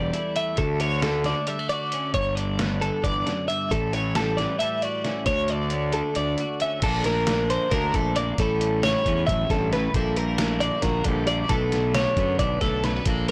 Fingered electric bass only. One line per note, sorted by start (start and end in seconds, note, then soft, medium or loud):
0.00 0.10 E1 medium
0.58 1.33 D2 medium
2.15 2.89 G1 medium
3.04 3.23 G1 medium
3.71 4.46 A1 medium
5.26 6.01 D2 medium
6.17 6.35 D2 medium
6.82 7.57 A#1 loud
7.72 7.90 D2 loud
7.94 8.31 A#1 medium
8.38 8.94 A1 loud
9.06 9.24 E2 medium
9.29 9.47 A1 loud
9.50 9.87 A1 medium
9.94 10.69 A#1 loud
10.83 11.02 A#1 medium
11.06 11.43 A#1 medium
11.50 12.06 B1 loud
12.17 12.36 F#2 medium
12.39 12.58 B1 loud
12.62 12.99 B1 medium
13.06 13.31 A#1 medium